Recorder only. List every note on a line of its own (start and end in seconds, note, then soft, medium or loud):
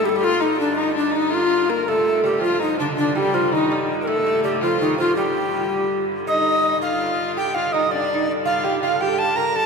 0.05 0.11 G4 medium
0.05 0.17 A4 medium
0.16 0.25 G4 medium
0.24 0.43 F4 loud
0.42 0.60 D#4 medium
0.60 0.80 D4 medium
0.78 0.96 D#4 loud
0.97 1.17 D4 medium
1.16 1.35 D#4 medium
1.34 1.71 F4 medium
1.70 1.90 A#4 loud
1.88 2.24 A4 loud
2.25 2.42 G4 medium
2.43 2.60 F4 medium
2.61 2.78 D#4 medium
2.79 2.85 D4 medium
2.98 3.19 D4 medium
3.17 3.36 G4 medium
3.34 3.53 F4 medium
3.54 3.80 D#4 medium
4.01 4.09 A#4 medium
4.07 4.43 A4 loud
4.44 4.61 G4 medium
4.62 4.79 F4 medium
4.81 4.98 D#4 medium
4.99 5.15 F4 medium
5.16 6.04 G4 medium
6.27 6.78 D#5 medium
6.82 7.33 F5 medium
7.37 7.56 G5 medium
7.54 7.74 F5 medium
7.72 7.93 D#5 medium
7.91 8.32 D5 medium
8.45 8.79 F5 medium
8.83 9.02 F5 medium
9.01 9.20 G5 loud
9.19 9.38 A5 loud
9.36 9.57 A#5 loud
9.56 9.66 A5 loud